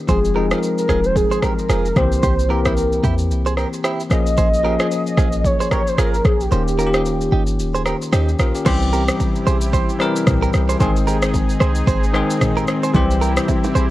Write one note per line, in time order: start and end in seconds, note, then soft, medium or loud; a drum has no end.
0.00 0.11 D#3 medium
0.00 0.11 A#3 medium
0.00 0.11 C#4 medium
0.00 0.11 G4 medium
0.08 0.53 F1 loud
0.08 0.30 F3 medium
0.08 0.31 G#3 medium
0.08 0.31 C4 medium
0.08 0.54 G#4 medium
0.08 0.19 G#4 medium
0.08 0.31 G#4 medium
0.08 0.19 C5 medium
0.08 kick loud
0.08 shaker medium
0.25 shaker medium
0.35 1.19 F3 medium
0.35 1.19 G#3 medium
0.35 1.20 C4 medium
0.35 1.20 D#4 medium
0.35 0.46 G4 medium
0.35 0.46 A#4 medium
0.51 0.59 F4 medium
0.51 0.58 G#4 medium
0.51 0.78 A#4 medium
0.51 cross-stick loud
0.51 shaker soft
0.63 shaker medium
0.78 1.07 A#4 medium
0.78 shaker medium
0.89 1.24 D#1 medium
0.89 1.00 F4 medium
0.89 0.99 G#4 medium
0.89 kick medium
0.89 cross-stick medium
0.89 shaker medium
1.04 1.16 C5 loud
1.04 shaker medium
1.16 1.45 G#4 medium
1.16 kick medium
1.16 shaker medium
1.32 1.39 G#4 medium
1.32 1.39 C5 medium
1.32 shaker medium
1.43 1.53 G4 medium
1.43 1.53 A#4 medium
1.43 1.99 A#4 loud
1.43 kick medium
1.43 cross-stick medium
1.43 shaker soft
1.59 shaker medium
1.70 1.92 F1 medium
1.70 1.87 F4 medium
1.70 1.87 G#4 medium
1.70 cross-stick medium
1.70 shaker medium
1.86 shaker soft
1.95 2.19 C2 loud
1.95 2.03 C#3 medium
1.95 2.41 A#3 medium
1.95 2.41 C4 medium
1.95 2.42 G4 medium
1.95 2.52 C5 loud
1.95 kick medium
1.95 cross-stick medium
1.95 shaker soft
2.02 2.44 E3 medium
2.12 shaker medium
2.23 3.00 C2 loud
2.23 2.34 G4 medium
2.23 2.33 C5 medium
2.23 kick loud
2.23 shaker medium
2.39 shaker medium
2.49 3.33 E3 medium
2.49 3.33 A#3 medium
2.49 3.34 C4 medium
2.49 2.60 G4 medium
2.49 3.34 G4 medium
2.49 2.60 A#4 medium
2.49 3.04 A#4 medium
2.65 2.73 E4 medium
2.65 2.73 G4 medium
2.65 kick medium
2.65 cross-stick loud
2.65 shaker soft
2.77 shaker medium
2.92 shaker medium
3.03 3.32 E2 medium
3.03 3.14 E4 medium
3.03 3.14 G4 medium
3.03 kick medium
3.03 shaker medium
3.18 shaker medium
3.30 3.65 C2 loud
3.30 shaker medium
3.46 3.54 G#4 medium
3.46 3.53 C5 medium
3.46 shaker medium
3.57 3.68 G4 medium
3.57 3.67 A#4 medium
3.57 cross-stick medium
3.57 shaker soft
3.73 shaker medium
3.84 4.01 E4 medium
3.84 4.01 G4 medium
3.84 cross-stick loud
3.84 shaker medium
4.00 shaker soft
4.10 4.77 A#1 loud
4.10 4.55 F3 medium
4.10 4.55 A#3 medium
4.10 4.56 C#4 medium
4.10 4.56 G#4 medium
4.10 5.47 D#5 loud
4.10 cross-stick medium
4.10 shaker soft
4.26 shaker medium
4.37 4.48 G#4 medium
4.37 4.47 C5 medium
4.37 kick loud
4.37 shaker medium
4.54 shaker medium
4.63 5.47 F3 medium
4.63 5.48 A#3 medium
4.63 5.48 C#4 medium
4.63 4.75 G4 medium
4.63 5.49 G#4 medium
4.63 4.74 A#4 medium
4.80 4.88 F4 medium
4.80 4.87 G#4 medium
4.80 cross-stick loud
4.80 shaker soft
4.92 shaker medium
5.07 shaker medium
5.17 5.53 A#1 medium
5.17 5.28 F4 medium
5.17 5.28 G#4 medium
5.17 kick medium
5.17 cross-stick medium
5.17 shaker medium
5.33 shaker medium
5.44 5.72 C#5 loud
5.44 kick medium
5.44 shaker medium
5.60 5.68 G#4 medium
5.60 5.67 C5 medium
5.60 shaker medium
5.71 5.82 G4 medium
5.71 5.81 A#4 medium
5.71 5.90 C#5 loud
5.71 kick medium
5.71 cross-stick medium
5.71 shaker soft
5.87 5.99 C5 medium
5.87 shaker medium
5.98 6.20 G#1 loud
5.98 6.16 F4 medium
5.98 6.15 G#4 medium
5.98 6.28 A#4 loud
5.98 cross-stick loud
5.98 shaker medium
6.14 shaker soft
6.25 6.47 A#1 medium
6.25 6.43 G#4 medium
6.25 kick medium
6.25 cross-stick medium
6.25 shaker soft
6.41 7.48 G4 medium
6.41 shaker medium
6.51 7.28 D#1 loud
6.51 6.73 D#3 medium
6.51 6.74 A#3 medium
6.51 6.74 C#4 medium
6.51 6.62 G4 medium
6.51 6.74 G4 medium
6.51 6.62 C5 medium
6.51 shaker medium
6.68 shaker medium
6.78 7.62 D#3 medium
6.78 7.62 A#3 medium
6.78 7.63 C#4 medium
6.78 6.87 F4 medium
6.78 6.89 G4 medium
6.78 6.88 A#4 medium
6.78 shaker medium
6.86 7.66 G4 medium
6.94 7.02 D#4 medium
6.94 7.01 G4 medium
6.94 cross-stick loud
6.94 shaker soft
7.06 shaker medium
7.21 shaker medium
7.32 7.61 G1 loud
7.32 7.43 D#4 medium
7.32 7.42 G4 medium
7.47 shaker medium
7.59 7.94 D#1 loud
7.59 shaker medium
7.75 7.82 G#4 medium
7.75 7.82 C5 medium
7.75 shaker medium
7.86 7.96 G4 medium
7.86 7.96 A#4 medium
7.86 cross-stick medium
7.86 shaker soft
8.02 shaker medium
8.13 8.35 D#2 loud
8.13 8.38 C#4 medium
8.13 8.30 D#4 medium
8.13 8.29 G4 medium
8.13 8.38 G4 medium
8.13 cross-stick loud
8.13 shaker medium
8.29 shaker soft
8.39 8.52 A#1 medium
8.39 8.55 F4 medium
8.39 8.54 A#4 medium
8.39 cross-stick loud
8.39 shaker soft
8.55 8.81 C#4 medium
8.55 8.66 G4 medium
8.55 shaker medium
8.65 9.10 C2 loud
8.65 10.78 C3 medium
8.65 9.49 E3 medium
8.65 9.50 G3 medium
8.65 13.90 C4 medium
8.65 9.50 C4 medium
8.65 10.78 E4 medium
8.65 10.78 G4 loud
8.65 8.76 G4 medium
8.65 9.50 G4 loud
8.65 8.76 C5 medium
8.65 kick loud
8.65 crash medium
8.65 shaker medium
8.82 shaker medium
8.93 9.03 G4 medium
8.93 9.03 A#4 medium
8.93 shaker medium
9.08 cross-stick loud
9.08 shaker medium
9.20 kick medium
9.20 shaker medium
9.35 shaker medium
9.47 9.82 A#1 medium
9.47 9.57 G#4 medium
9.47 9.56 C5 medium
9.47 shaker medium
9.61 shaker medium
9.73 9.91 G4 medium
9.73 9.90 C5 medium
9.73 kick loud
9.73 shaker medium
9.89 shaker medium
9.99 10.63 E3 medium
9.99 10.64 G3 medium
9.99 10.64 C4 medium
9.99 10.65 A#4 loud
9.99 cross-stick medium
9.99 shaker soft
10.16 shaker loud
10.27 10.49 C2 loud
10.27 kick medium
10.27 cross-stick loud
10.27 mid tom medium
10.27 shaker medium
10.42 10.50 G4 medium
10.42 10.49 A#4 medium
10.42 shaker soft
10.53 10.76 C2 medium
10.53 cross-stick medium
10.53 shaker soft
10.69 10.77 G#4 medium
10.69 10.76 C5 medium
10.69 shaker medium
10.79 11.57 G#1 loud
10.79 11.64 D#3 medium
10.79 11.64 G#3 medium
10.79 11.64 C4 medium
10.79 12.93 D#4 medium
10.79 12.93 G#4 medium
10.79 10.91 G#4 medium
10.79 11.65 G#4 loud
10.79 10.90 C5 medium
10.79 kick loud
10.79 shaker medium
10.96 shaker medium
11.07 11.18 G4 medium
11.07 11.17 A#4 medium
11.07 shaker medium
11.22 cross-stick loud
11.22 shaker medium
11.34 kick medium
11.34 shaker medium
11.50 shaker medium
11.60 11.83 C2 loud
11.60 11.71 G#4 medium
11.60 11.71 C5 medium
11.60 cross-stick medium
11.60 shaker medium
11.75 shaker medium
11.87 12.22 G#1 loud
11.87 12.05 G#4 medium
11.87 12.04 C5 medium
11.87 kick loud
11.87 shaker medium
12.04 shaker medium
12.13 12.78 D#3 medium
12.13 12.78 G#3 medium
12.13 12.78 C4 medium
12.13 12.79 G#4 loud
12.13 cross-stick medium
12.13 shaker soft
12.30 shaker loud
12.41 kick medium
12.41 cross-stick loud
12.41 mid tom medium
12.41 shaker medium
12.57 12.64 G4 medium
12.57 12.64 A#4 medium
12.57 shaker soft
12.68 cross-stick loud
12.68 shaker soft
12.83 12.91 G#4 medium
12.83 12.91 C5 medium
12.83 shaker loud
12.94 13.39 C2 loud
12.94 13.90 C3 medium
12.94 13.78 E3 medium
12.94 13.78 G3 medium
12.94 13.79 C4 medium
12.94 13.90 E4 medium
12.94 13.90 G4 medium
12.94 13.05 G4 medium
12.94 13.79 G4 loud
12.94 13.05 C5 medium
12.94 kick loud
12.94 low conga medium
12.94 shaker medium
13.11 shaker medium
13.22 13.32 G4 medium
13.22 13.31 A#4 medium
13.22 shaker medium
13.37 cross-stick loud
13.37 shaker medium
13.48 kick loud
13.48 high bongo medium
13.48 shaker medium
13.64 low bongo medium
13.64 shaker medium
13.75 13.90 A#1 medium
13.75 13.85 G#4 medium
13.75 13.85 C5 medium
13.75 low bongo soft
13.75 shaker medium